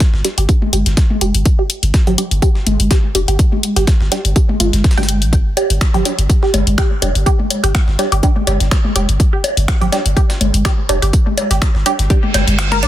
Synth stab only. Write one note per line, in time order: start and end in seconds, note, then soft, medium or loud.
0.25 0.32 G3 medium
0.25 0.32 D4 medium
0.25 0.32 G4 loud
0.49 0.56 G3 medium
0.49 0.56 D4 medium
0.49 0.56 G4 medium
2.18 2.26 G3 loud
2.18 2.26 D4 medium
2.18 2.26 G4 loud
3.15 3.22 G3 medium
3.15 3.22 D4 medium
3.15 3.22 G4 loud
4.12 4.19 G3 medium
4.12 4.19 D4 medium
4.12 4.19 G4 loud
4.36 4.43 G3 medium
4.36 4.43 D4 medium
4.36 4.43 G4 medium
4.97 5.04 G3 medium
4.97 5.04 D4 medium
4.97 5.04 G4 loud
6.05 6.13 G3 loud
6.05 6.13 D4 medium
6.05 6.13 G4 loud
7.02 7.09 G3 medium
7.02 7.09 D4 medium
7.02 7.09 G4 loud
7.99 8.06 G3 medium
7.99 8.06 D4 medium
7.99 8.06 G4 loud
8.23 8.30 G3 medium
8.23 8.30 D4 medium
8.23 8.30 G4 medium
9.92 10.00 G3 loud
9.92 10.00 D4 medium
9.92 10.00 G4 loud
10.89 10.97 G3 medium
10.89 10.97 D4 medium
10.89 10.97 G4 loud
11.86 11.93 G3 medium
11.86 11.93 D4 medium
11.86 11.93 G4 loud
12.10 12.18 G3 medium
12.10 12.18 D4 medium
12.10 12.18 G4 medium